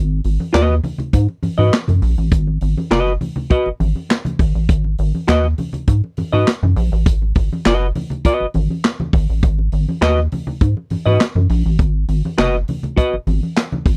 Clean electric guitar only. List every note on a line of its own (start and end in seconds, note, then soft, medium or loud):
0.53 0.74 F#4 medium
0.53 0.74 B4 loud
0.53 0.75 D#5 loud
1.58 1.75 F#4 medium
1.58 1.74 B4 medium
1.58 1.74 D#5 medium
2.91 3.12 F#4 medium
2.91 3.12 B4 loud
2.91 3.12 D#5 medium
3.50 3.68 F#4 medium
3.50 3.68 B4 medium
3.50 3.68 D#5 medium
5.28 5.45 F#4 medium
5.28 5.46 B4 medium
5.28 5.46 D#5 loud
6.32 6.49 F#4 medium
6.32 6.49 B4 medium
6.32 6.48 D#5 medium
7.65 7.86 F#4 medium
7.65 7.86 B4 medium
7.65 7.86 D#5 medium
8.25 8.45 F#4 medium
8.25 8.45 B4 medium
8.25 8.46 D#5 loud
10.01 10.19 F#4 medium
10.01 10.19 B4 medium
10.01 10.19 D#5 loud
11.06 11.22 F#4 medium
11.06 11.22 B4 medium
11.06 11.21 D#5 medium
12.38 12.55 F#4 medium
12.38 12.55 B4 loud
12.38 12.56 D#5 loud
12.96 13.14 F#4 medium
12.96 13.14 B4 medium
12.96 13.15 D#5 loud